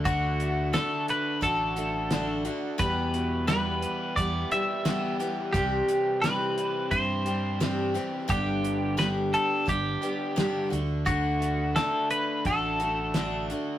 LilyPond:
<<
  \new Staff \with { instrumentName = "Clean electric guitar" } { \time 4/4 \key d \mixolydian \tempo 4 = 87 fis'4 a'8 b'8 a'4. r8 | b'4 b'4 d''8 e''4 r8 | g'4 b'4 c''4. r8 | g'4 b'8 a'8 g'4. r8 |
fis'4 a'8 b'8 a'4. r8 | }
  \new Staff \with { instrumentName = "Steel-string acoustic guitar" } { \time 4/4 \key d \mixolydian <d a d' fis'>4 <d a d' fis'>4 <d a d' fis'>8 <a d' fis'>8 <d a d' fis'>8 <a d' fis'>8 | <e, b, e g b g'>4 <e, b, e g b g'>4 <e g b g'>8 <e g b g'>8 <e, b, e g b g'>8 <e g b g'>8 | <c e g c' g'>4 <c e g c' g'>4 <e g c' g'>8 <g c' g'>8 <c e g c' g'>8 <g c' g'>8 | <g, d g b d' g'>4 <g, d g b d' g'>4 <g b d' g'>8 <g b d' g'>8 <g, d g b d' g'>8 <a d' fis'>8 |
<d a d' fis'>4 <d a d' fis'>4 <d a d' fis'>8 <a d' fis'>8 <d a d' fis'>8 <a d' fis'>8 | }
  \new Staff \with { instrumentName = "Overdriven electric guitar" } { \clef bass \time 4/4 \key d \mixolydian d8 a8 d8 d'8 fis'8 a8 d'8 d8 | e,8 b,8 e8 b8 e'8 g8 b8 e8 | c8 e8 e8 c'8 e'8 g8 c'8 e8 | g,8 d8 g8 d'8 g'8 b8 d'8 d8 |
d8 a8 d8 d'8 fis'8 a8 d'8 d8 | }
  \new Staff \with { instrumentName = "Fingered electric bass" } { \clef bass \time 4/4 \key d \mixolydian d,4. r8 a,,2 | e,2 e,8 r4. | c,8 r4. g,2 | g,,2 g,,8 r4 d,8~ |
d,4. r8 a,,2 | }
  \new DrumStaff \with { instrumentName = "Drums" } \drummode { \time 4/4 <hh bd>8 hh8 <hh sn>8 hh8 <hh bd>8 hh8 <hh sn>8 hh8 | <hh bd>8 hh8 <hh sn>8 hh8 <hh bd>8 hh8 <hh sn>8 hh8 | <hh bd>8 hh8 <hh sn>8 hh8 <hh bd>8 hh8 <hh sn>8 hh8 | <hh bd>8 hh8 <hh sn>8 hh8 <hh bd>8 hh8 <hh sn>8 hh8 |
<hh bd>8 hh8 <hh sn>8 hh8 <hh bd>8 hh8 <hh sn>8 hh8 | }
>>